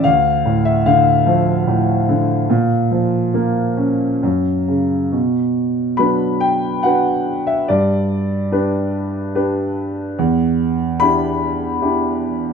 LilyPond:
\new Staff \with { instrumentName = "Grand piano" } { \time 3/4 \key d \lydian \tempo 4 = 72 << { f''8. e''16 f''2~ | f''2 r4 | \key b \minor r4 b''8 g''8 fis''8. e''16 | d''4. r4. |
r4 b''2 | } \\ { d,8 a,8 d8 f8 a,8 d8 | ais,8 eis8 ais8 cis'8 fis,8 cis8 | b,4 <fis d' b'>4 <d' fis' b'>4 | g,4 <d' g' b'>4 <d' g' b'>4 |
e,4 <d' e' g'>4 <d' e' g'>4 | } >> }